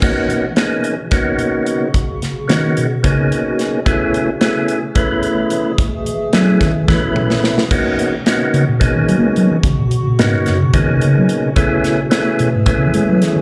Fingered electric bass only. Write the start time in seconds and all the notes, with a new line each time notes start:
2.50 D#3
2.78 B2
3.04 C#3
6.34 F#3
6.62 D#3
6.89 E3
8.54 C#3
8.68 A#2
8.82 B2
8.95 D#3
9.09 F#3
9.19 A#3
9.28 G#3
9.37 F#3
9.51 E3
9.64 C#3
9.79 A#2
9.92 B2
10.07 A#2
10.19 G#2
10.35 G2
10.49 F#2
10.63 B2
10.75 D#3
10.90 C3
11.04 C#3
11.18 F#3
12.40 B2
12.55 G#2
12.67 A2
12.77 C#3
12.87 E3
12.95 G#3
13.09 F#3
13.23 E3
13.36 D#3